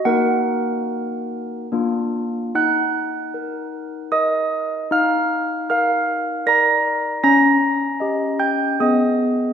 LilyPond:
\new Staff \with { instrumentName = "Handbells" } { \time 3/4 \key ees \minor \tempo 4 = 76 << { <bes ees' ges' bes' ges''>2 <bes d' f'>4 | <ges'' ges'''>2 <ees'' ees'''>4 | <f'' f'''>4 <f'' f'''>4 <bes'' bes'''>4 | <bes'' bes'''>4. <g'' g'''>8 <ees'' ees'''>4 | } \\ { r2. | ees'4 bes'4 bes'4 | ees'4 bes'4 <bes' d''>4 | des'4 <g' ees''>4 <ces' aes'>4 | } >> }